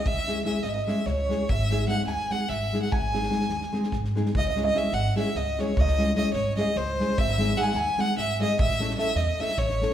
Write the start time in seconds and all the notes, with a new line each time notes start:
0.06 C#2 E5, kick
0.17 snare
0.27 G#3 C#4 E4 G#4, snare
0.45 G#3 C#4 E4 G#4 E5, snare
0.63 G#1 D#5, snare
0.69 E5
0.74 D#5
0.86 G#3 C#4 E4 G#4 E5, snare
1.06 C#2 C#5, snare
1.29 G#3 C#4 E4 G#4, snare
1.49 G#1 E5, kick
1.70 G#3 C4 D#4 G#4, snare
1.87 G#3 C4 D#4 G#4 F#5, snare
1.91 F#5
2.06 D#2 G#5, snare
2.30 G#3 C4 D#4 G#4 F#5, snare
2.49 G#1 E5, snare
2.73 G#3 C4 D#4 G#4, snare
2.82 F#5
2.92 G#1 G#5, kick
3.13 G#3 C4 D#4 G#4, snare
3.23 snare
3.30 G#3 C4 D#4 G#4, snare
3.41 snare
3.49 D#2, snare
3.61 snare
3.73 G#3 C4 D#4 G#4, snare
3.83 snare
3.92 G#2, kick, snare
4.05 snare
4.15 G#3 C4 D#4 G#4, snare
4.26 snare
4.35 C#2 D#5, kick
4.49 D#5
4.56 G#3 C#4 E4 G#4, snare
4.64 D#5
4.74 G#3 C#4 E4 G#4 E5, snare
4.92 G#1 F#5, snare
5.15 G#3 C#4 E4 G#4 E5, snare
5.35 C#2 D#5, snare
5.58 G#3 C#4 E4 G#4 C#5, snare
5.77 C#2 D#5, kick
5.88 snare
5.98 G#3 C#4 E4 G#4, snare
6.15 G#3 C#4 E4 G#4 D#5, snare
6.33 G#1 C#5, snare
6.56 G#3 C#4 E4 G#4 D#5, snare
6.61 D#5
6.75 C#2 C5, snare
6.99 G#3 C#4 E4 G#4, snare
7.18 G#1 E5, kick
7.29 snare
7.38 G#3 C4 D#4 G#4, snare
7.56 G#3 C4 D#4 G#4 F#5, snare
7.61 G#5
7.65 F#5
7.74 D#2 G#5, snare
7.98 G#3 C4 D#4 G#4 F#5, snare
8.17 G#1 E5, snare
8.39 G#3 C4 D#4 G#4 D#5, snare
8.59 A1 E5, kick
8.71 snare
8.80 A3 C#4 E4 A4, snare
8.90 snare
8.97 A3 C#4 E4 A4 E5, snare
9.15 E2 D#5, snare
9.40 A3 C#4 E4 A4 E5, snare
9.49 snare
9.58 A1 C#5, kick, snare
9.70 snare
9.81 A3 C#4 E4 A4, snare